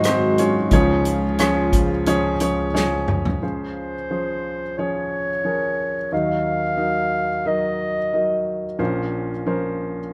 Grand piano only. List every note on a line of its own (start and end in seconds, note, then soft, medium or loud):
0.00 0.68 G#1 medium
0.00 0.68 G#2 medium
0.00 0.05 F#3 medium
0.00 0.05 D#4 medium
0.00 0.40 F4 medium
0.00 0.74 F#4 medium
0.00 0.05 G#4 medium
0.00 0.05 C5 loud
0.00 0.74 D#5 medium
0.00 0.73 F5 loud
0.00 0.74 F#5 medium
0.05 0.55 F#3 medium
0.05 0.37 C4 medium
0.05 0.55 D#4 medium
0.05 0.38 G#4 medium
0.05 0.08 C5 medium
0.05 0.41 C5 medium
0.39 0.72 C#4 medium
0.39 2.38 F4 medium
0.39 0.72 G#4 medium
0.39 0.72 C#5 medium
0.72 3.40 C#2 medium
0.72 3.40 C#3 medium
0.72 1.23 F3 medium
0.72 1.23 C#4 medium
0.72 1.23 G#4 medium
0.72 1.23 C#5 loud
1.39 1.90 F3 medium
1.39 1.90 C#4 medium
1.39 1.91 G#4 medium
1.39 1.90 C#5 medium
2.07 2.33 F3 medium
2.07 2.33 C#4 medium
2.07 2.33 G#4 medium
2.07 2.33 C#5 medium
2.41 2.67 F3 medium
2.41 2.67 C#4 medium
2.41 2.67 G#4 medium
2.41 2.67 C#5 medium
2.74 3.26 F3 medium
2.74 3.26 C#4 medium
2.74 3.26 G#4 medium
2.74 3.26 C#5 medium
3.42 6.08 C#2 soft
3.42 6.08 C#3 soft
3.42 3.94 F3 medium
3.42 3.94 C#4 soft
3.42 3.94 G#4 soft
3.42 3.94 C5 medium
4.11 4.62 F3 medium
4.11 4.62 C#4 soft
4.11 4.62 G#4 soft
4.11 4.62 C5 medium
4.79 5.29 F3 medium
4.79 5.29 C#4 soft
4.79 5.29 G#4 soft
4.79 5.29 C#5 medium
5.44 5.95 F3 soft
5.44 5.95 C#4 soft
5.44 5.96 G#4 soft
5.44 5.96 A#4 medium
6.12 8.76 D#2 soft
6.12 8.76 D#3 soft
6.12 6.63 F#3 medium
6.12 6.63 D#4 soft
6.12 6.63 A#4 soft
6.12 6.63 D#5 medium
6.77 7.29 F#3 medium
6.77 7.29 D#4 medium
6.77 7.29 A#4 soft
6.77 7.29 D#5 medium
7.46 7.97 F#3 medium
7.46 7.97 D#4 soft
7.46 7.97 A#4 medium
7.46 7.97 D#5 medium
8.13 8.64 F#3 medium
8.13 8.64 D#4 soft
8.13 8.64 A#4 soft
8.13 8.64 D#5 medium
8.79 10.13 A#1 medium
8.79 10.13 A#2 medium
8.79 9.30 F3 medium
8.79 9.30 C#4 medium
8.79 9.31 A#4 medium
8.79 9.31 C5 medium
9.46 9.98 F3 medium
9.46 9.98 C#4 medium
9.46 9.98 A#4 medium
9.46 9.98 C5 medium